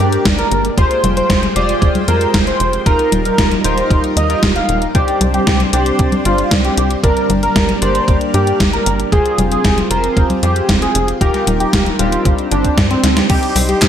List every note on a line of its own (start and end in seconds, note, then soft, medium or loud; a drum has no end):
0.00 0.18 G2 medium
0.00 0.74 G#3 medium
0.00 0.76 A#3 medium
0.00 0.74 D4 medium
0.00 0.76 D4 medium
0.00 0.26 G4 loud
0.00 0.74 G4 medium
0.00 0.74 A#4 medium
0.00 0.76 A#4 medium
0.00 0.74 D5 medium
0.12 closed hi-hat soft
0.25 0.44 G1 medium
0.25 kick loud
0.25 snare loud
0.25 closed hi-hat medium
0.39 0.65 A#4 medium
0.39 closed hi-hat soft
0.51 0.70 G1 loud
0.51 closed hi-hat medium
0.65 closed hi-hat soft
0.78 0.87 F1 loud
0.78 2.84 G#3 medium
0.78 1.53 F4 medium
0.78 2.84 F4 medium
0.78 1.53 G4 medium
0.78 1.53 G#4 medium
0.78 1.53 C5 medium
0.78 1.04 C5 loud
0.78 2.84 C5 medium
0.78 2.84 G5 medium
0.78 kick loud
0.78 closed hi-hat medium
0.91 closed hi-hat soft
1.04 1.23 F1 loud
1.04 closed hi-hat medium
1.04 high conga medium
1.17 1.43 C5 loud
1.17 closed hi-hat soft
1.30 1.49 F1 loud
1.30 kick loud
1.30 snare loud
1.30 closed hi-hat medium
1.43 closed hi-hat soft
1.43 high conga medium
1.56 1.75 F1 loud
1.56 2.05 F4 medium
1.56 2.05 G4 medium
1.56 2.05 G#4 medium
1.56 2.05 C5 loud
1.56 1.91 D5 loud
1.56 closed hi-hat medium
1.69 closed hi-hat soft
1.82 1.91 F1 medium
1.82 kick loud
1.82 closed hi-hat medium
1.95 closed hi-hat soft
1.95 high conga medium
2.08 2.27 F2 medium
2.08 2.83 F4 medium
2.08 2.83 G4 medium
2.08 2.83 G#4 medium
2.08 2.34 A#4 medium
2.08 2.83 C5 medium
2.08 closed hi-hat medium
2.21 closed hi-hat soft
2.34 2.53 F1 medium
2.34 kick loud
2.34 snare loud
2.34 closed hi-hat medium
2.47 2.73 C5 medium
2.47 closed hi-hat soft
2.60 2.79 F1 loud
2.60 closed hi-hat medium
2.73 closed hi-hat soft
2.86 2.96 D#1 loud
2.86 4.93 G3 medium
2.86 3.61 D#4 medium
2.86 4.93 D#4 medium
2.86 3.61 F4 medium
2.86 4.93 F4 medium
2.86 3.61 G4 medium
2.86 4.93 A#4 medium
2.86 3.61 A#4 loud
2.86 3.12 A#4 loud
2.86 kick loud
2.86 closed hi-hat medium
2.99 closed hi-hat soft
3.12 3.31 D#1 medium
3.12 closed hi-hat medium
3.12 high conga medium
3.25 3.52 A#4 loud
3.25 closed hi-hat soft
3.38 3.57 D#1 loud
3.38 kick loud
3.38 snare loud
3.38 closed hi-hat medium
3.51 closed hi-hat soft
3.51 high conga medium
3.64 3.83 D#1 loud
3.64 4.14 D#4 loud
3.64 4.14 F4 medium
3.64 4.14 G4 medium
3.64 4.14 A#4 loud
3.64 3.99 C5 loud
3.64 closed hi-hat medium
3.78 closed hi-hat soft
3.90 4.00 D#1 medium
3.90 kick loud
3.90 closed hi-hat medium
4.04 closed hi-hat soft
4.17 4.35 D#2 medium
4.17 4.43 D#5 loud
4.17 closed hi-hat medium
4.30 4.92 D#4 medium
4.30 4.92 F4 medium
4.30 4.92 G4 medium
4.30 4.92 A#4 loud
4.30 closed hi-hat soft
4.43 4.62 D#1 medium
4.43 kick loud
4.43 snare loud
4.43 closed hi-hat medium
4.56 4.82 F5 medium
4.56 closed hi-hat soft
4.69 4.88 D#1 loud
4.69 closed hi-hat medium
4.82 closed hi-hat soft
4.95 5.04 C2 loud
4.95 9.08 G3 medium
4.95 7.02 C4 medium
4.95 5.70 D4 medium
4.95 9.08 D4 medium
4.95 5.21 G4 loud
4.95 5.70 G4 medium
4.95 5.70 C5 medium
4.95 7.02 C5 medium
4.95 5.70 D5 medium
4.95 kick loud
4.95 closed hi-hat medium
5.08 closed hi-hat soft
5.21 5.40 C2 loud
5.21 closed hi-hat medium
5.21 high conga medium
5.34 5.60 G4 loud
5.34 closed hi-hat soft
5.47 5.66 C2 loud
5.47 kick loud
5.47 snare loud
5.47 closed hi-hat medium
5.60 closed hi-hat soft
5.60 high conga medium
5.73 5.92 C2 loud
5.73 6.22 D4 medium
5.73 6.22 G4 medium
5.73 6.08 G4 loud
5.73 6.22 C5 medium
5.73 6.22 D5 loud
5.73 closed hi-hat medium
5.86 closed hi-hat soft
5.99 6.09 C2 medium
5.99 kick loud
5.99 closed hi-hat medium
6.12 closed hi-hat soft
6.12 high conga medium
6.25 6.44 G1 medium
6.25 7.00 D4 medium
6.25 6.52 F4 loud
6.25 7.00 G4 medium
6.25 7.00 C5 medium
6.25 7.00 D5 medium
6.25 closed hi-hat medium
6.38 closed hi-hat soft
6.51 6.70 C2 medium
6.51 kick loud
6.51 snare loud
6.51 closed hi-hat medium
6.65 6.91 G4 medium
6.65 closed hi-hat soft
6.77 6.96 C2 loud
6.77 closed hi-hat medium
6.91 closed hi-hat soft
7.03 7.13 G1 loud
7.03 9.10 A#3 medium
7.03 7.79 D4 medium
7.03 7.79 G4 medium
7.03 9.10 A#4 medium
7.03 7.79 A#4 medium
7.03 7.30 A#4 loud
7.03 7.79 D5 medium
7.03 kick loud
7.03 closed hi-hat medium
7.17 closed hi-hat soft
7.30 7.49 G1 medium
7.30 closed hi-hat medium
7.30 high conga medium
7.43 7.69 A#4 loud
7.43 closed hi-hat soft
7.56 7.75 G1 loud
7.56 kick loud
7.56 snare loud
7.56 closed hi-hat medium
7.69 closed hi-hat soft
7.69 high conga medium
7.82 8.01 G1 loud
7.82 8.31 D4 loud
7.82 8.31 G4 medium
7.82 8.31 A#4 medium
7.82 8.17 C5 loud
7.82 8.31 D5 loud
7.82 closed hi-hat medium
7.95 closed hi-hat soft
8.08 8.17 G1 medium
8.08 kick loud
8.08 closed hi-hat medium
8.21 closed hi-hat soft
8.34 8.53 G2 medium
8.34 9.09 D4 medium
8.34 8.60 G4 medium
8.34 9.09 G4 medium
8.34 9.09 A#4 medium
8.34 9.09 D5 medium
8.34 closed hi-hat medium
8.47 closed hi-hat soft
8.60 8.79 G1 medium
8.60 kick loud
8.60 snare loud
8.60 closed hi-hat medium
8.73 8.99 A#4 medium
8.73 closed hi-hat soft
8.86 9.05 G1 loud
8.86 closed hi-hat medium
9.00 closed hi-hat soft
9.12 9.22 F1 loud
9.12 11.19 C4 medium
9.12 9.87 F4 medium
9.12 12.22 F4 medium
9.12 9.87 G4 medium
9.12 9.87 G#4 medium
9.12 9.39 G#4 loud
9.12 9.87 C5 loud
9.12 kick loud
9.12 closed hi-hat medium
9.26 closed hi-hat soft
9.38 9.57 F1 loud
9.38 closed hi-hat loud
9.38 high conga medium
9.52 9.78 G#4 loud
9.52 closed hi-hat soft
9.64 9.83 F1 loud
9.64 kick loud
9.64 snare loud
9.64 closed hi-hat medium
9.78 closed hi-hat soft
9.78 high conga medium
9.90 10.09 F1 loud
9.90 10.40 F4 medium
9.90 10.40 G4 medium
9.90 10.40 G#4 medium
9.90 10.26 A#4 medium
9.90 10.40 C5 loud
9.90 closed hi-hat medium
10.04 closed hi-hat soft
10.17 10.26 F1 medium
10.17 kick loud
10.17 closed hi-hat medium
10.30 closed hi-hat soft
10.30 high conga medium
10.43 10.62 F2 medium
10.43 11.18 F4 medium
10.43 11.18 G4 medium
10.43 10.69 G4 loud
10.43 11.18 G#4 medium
10.43 11.18 C5 medium
10.43 closed hi-hat medium
10.56 closed hi-hat soft
10.69 10.88 F1 medium
10.69 kick loud
10.69 snare loud
10.69 closed hi-hat medium
10.82 11.08 G#4 medium
10.82 closed hi-hat soft
10.95 11.14 F1 loud
10.95 closed hi-hat medium
11.08 closed hi-hat soft
11.21 11.30 D#1 loud
11.21 11.96 D#4 medium
11.21 12.24 D#4 medium
11.21 11.96 F4 medium
11.21 11.96 G4 medium
11.21 11.47 G4 loud
11.21 11.96 A#4 loud
11.21 12.24 A#4 medium
11.21 kick loud
11.21 closed hi-hat medium
11.34 snare soft
11.34 closed hi-hat soft
11.47 11.66 D#1 loud
11.47 closed hi-hat loud
11.47 high conga medium
11.60 11.86 G4 loud
11.60 closed hi-hat soft
11.73 11.92 D#1 loud
11.73 kick loud
11.73 snare loud
11.73 closed hi-hat medium
11.86 closed hi-hat soft
11.86 high conga medium
11.99 12.18 D#1 loud
11.99 12.48 G3 loud
11.99 12.48 C4 medium
11.99 12.48 D4 medium
11.99 12.34 F4 loud
11.99 12.48 G4 loud
11.99 closed hi-hat loud
12.12 closed hi-hat soft
12.25 12.35 G1 medium
12.25 13.29 C4 medium
12.25 13.29 D4 medium
12.25 13.29 C5 medium
12.25 kick loud
12.25 closed hi-hat medium
12.38 closed hi-hat soft
12.51 12.70 G1 medium
12.51 13.27 G3 medium
12.51 13.27 C4 medium
12.51 12.78 D4 loud
12.51 13.27 D4 medium
12.51 13.27 G4 medium
12.51 closed hi-hat loud
12.64 kick medium
12.64 closed hi-hat soft
12.77 12.96 G2 medium
12.77 kick loud
12.77 snare loud
12.77 closed hi-hat medium
12.91 13.17 C4 loud
12.91 closed hi-hat soft
13.04 13.22 D2 medium
13.04 snare medium
13.04 closed hi-hat medium
13.17 snare loud
13.17 closed hi-hat soft
13.30 13.39 C2 loud
13.30 13.88 G3 medium
13.30 13.88 C4 medium
13.30 13.88 D#4 medium
13.30 13.56 G4 loud
13.30 13.88 G4 medium
13.30 13.88 C5 medium
13.30 13.88 D#5 medium
13.30 13.88 C6 medium
13.30 kick loud
13.30 closed hi-hat medium
13.30 crash loud
13.43 closed hi-hat soft
13.56 13.75 C2 medium
13.56 open hi-hat loud
13.56 high conga medium
13.69 13.88 G4 loud
13.69 closed hi-hat soft
13.82 13.88 C2 loud
13.82 kick loud
13.82 snare loud
13.82 clap medium
13.82 closed hi-hat medium